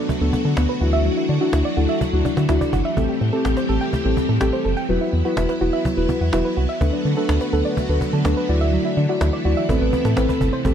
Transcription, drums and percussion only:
0.09 cajon bass loud
0.33 cajon bass medium
0.57 cajon slap loud
0.81 cajon slap soft
1.05 cajon slap soft
1.29 cajon slap soft
1.53 cajon slap loud
1.77 cajon slap soft
2.01 cajon bass loud
2.25 cajon bass medium
2.37 cajon slap medium
2.49 cajon slap loud
2.61 cajon bass medium
2.73 cajon bass loud
2.97 cajon bass loud
3.21 cajon slap soft
3.45 cajon slap loud
3.57 cajon slap medium
3.69 cajon slap soft
3.93 cajon bass loud
4.17 cajon bass medium
4.41 cajon slap loud
4.65 cajon slap soft
4.89 cajon slap soft
5.13 cajon slap soft
5.37 cajon slap loud
5.49 cajon slap medium
5.61 cajon slap soft
5.85 cajon bass loud
6.09 cajon bass medium
6.33 cajon slap loud
6.57 cajon slap soft
6.81 cajon bass loud
7.05 cajon slap soft
7.29 cajon slap loud
7.41 cajon slap medium
7.53 cajon slap soft
7.77 cajon bass loud
8.01 cajon bass medium
8.25 cajon slap loud
8.49 cajon slap soft
8.73 cajon slap soft
8.97 cajon slap soft
9.21 cajon slap loud
9.45 cajon slap soft
9.69 cajon bass loud
9.93 cajon bass medium
10.05 cajon slap medium
10.17 cajon slap loud
10.29 cajon bass medium
10.41 cajon bass loud
10.65 cajon bass loud

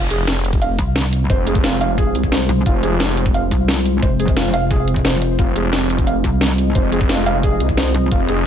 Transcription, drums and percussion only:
0.10 closed hi-hat medium
0.27 snare loud
0.27 closed hi-hat medium
0.45 closed hi-hat loud
0.53 kick loud
0.62 closed hi-hat medium
0.79 kick medium
0.79 closed hi-hat medium
0.96 snare loud
0.96 closed hi-hat medium
1.13 closed hi-hat loud
1.30 kick loud
1.30 closed hi-hat medium
1.47 closed hi-hat medium
1.55 kick loud
1.64 snare loud
1.64 closed hi-hat medium
1.81 closed hi-hat loud
1.98 kick loud
1.98 closed hi-hat medium
2.15 closed hi-hat medium
2.24 kick medium
2.32 snare loud
2.32 closed hi-hat medium
2.49 closed hi-hat medium
2.66 kick loud
2.66 closed hi-hat medium
2.83 closed hi-hat medium
3.00 snare loud
3.00 closed hi-hat medium
3.17 closed hi-hat medium
3.26 kick loud
3.34 closed hi-hat medium
3.51 kick medium
3.51 closed hi-hat medium
3.68 snare loud
3.68 closed hi-hat medium
3.85 closed hi-hat medium
4.03 kick loud
4.03 closed hi-hat medium
4.20 closed hi-hat medium
4.28 kick loud
4.37 snare loud
4.37 closed hi-hat medium
4.54 closed hi-hat medium
4.71 kick loud
4.71 closed hi-hat medium
4.88 closed hi-hat medium
4.96 kick medium
5.05 snare loud
5.05 closed hi-hat medium
5.22 closed hi-hat medium
5.39 kick loud
5.39 closed hi-hat medium
5.56 closed hi-hat medium
5.73 snare loud
5.73 closed hi-hat medium
5.90 closed hi-hat medium
5.99 kick loud
6.07 closed hi-hat medium
6.24 kick medium
6.24 closed hi-hat medium
6.41 snare loud
6.41 closed hi-hat medium
6.58 closed hi-hat medium
6.75 kick loud
6.75 closed hi-hat medium
6.92 closed hi-hat medium
7.01 kick loud
7.09 snare loud
7.09 closed hi-hat medium
7.26 closed hi-hat medium
7.43 kick loud
7.43 closed hi-hat medium
7.60 closed hi-hat medium
7.69 kick medium
7.77 snare loud
7.77 closed hi-hat medium
7.94 closed hi-hat medium
8.12 kick loud
8.12 closed hi-hat medium
8.29 closed hi-hat medium

